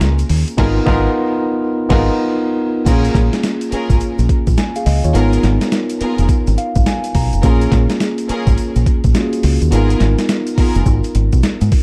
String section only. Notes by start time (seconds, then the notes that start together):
0.58 B3 F4 G#4 A#4
0.86 B3 F4 G#4 A#4
1.90 B3 F4 G#4 A#4
2.86 C#4 F4 G#4 A#4
3.72 C#4 F4 G#4 A#4
5.15 B3 F4 G#4 A#4
6.01 B3 F4 G#4 A#4
7.43 C#4 F4 G#4 A#4
8.29 C#4 F4 G#4 A#4
9.72 B3 F4 G#4 A#4
10.58 B3 F4 G#4 A#4